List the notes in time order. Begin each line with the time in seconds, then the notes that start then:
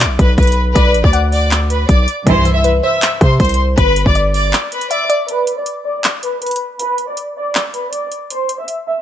0.00 clap, closed hi-hat
0.05 B1
0.19 B1 B4 B5, kick, closed hi-hat
0.38 B1 B4 B5, kick, closed hi-hat
0.43 closed hi-hat
0.47 closed hi-hat
0.52 closed hi-hat
0.75 B1 B4 D5 B5, kick, closed hi-hat
0.94 A1, closed hi-hat
1.04 D2 D5 D6, kick
1.13 F#5, closed hi-hat
1.32 D5 D6, open hi-hat
1.51 clap
1.70 B4 B5, closed hi-hat
1.89 B1 D5 D6, kick, closed hi-hat
2.08 closed hi-hat
2.27 C2 G2 E3 C5 C6, kick, closed hi-hat
2.45 E5, closed hi-hat
2.55 E5 E6
2.64 B4, closed hi-hat
2.83 C5 E5 E6
3.02 clap, closed hi-hat
3.21 C3 C5 C6, kick, closed hi-hat
3.40 C2 C5 C6, kick, closed hi-hat
3.45 closed hi-hat
3.49 closed hi-hat
3.54 closed hi-hat
3.78 G1 B4 B5, kick, closed hi-hat
3.96 closed hi-hat
4.06 G1 D5 D6, kick
4.15 D5, closed hi-hat
4.34 D5 D6, open hi-hat
4.53 clap
4.72 B4 B5, closed hi-hat
4.81 closed hi-hat
4.91 D5 E5 D6, closed hi-hat
5.10 D5, closed hi-hat
5.29 B4 B5, closed hi-hat
5.47 closed hi-hat
5.57 D5 D6
5.66 closed hi-hat
5.85 D5 D6
6.04 clap, closed hi-hat
6.23 B4 B5, closed hi-hat
6.42 B4 B5, closed hi-hat
6.46 closed hi-hat
6.51 closed hi-hat
6.56 closed hi-hat
6.79 B4 B5, closed hi-hat
6.98 closed hi-hat
7.08 D5 D6
7.17 closed hi-hat
7.36 D5 D6
7.55 clap
7.74 B4 B5, closed hi-hat
7.93 D5 D6, closed hi-hat
8.12 closed hi-hat
8.30 C5 C6, closed hi-hat
8.49 closed hi-hat
8.59 E5 E6
8.68 closed hi-hat
8.87 E5 E6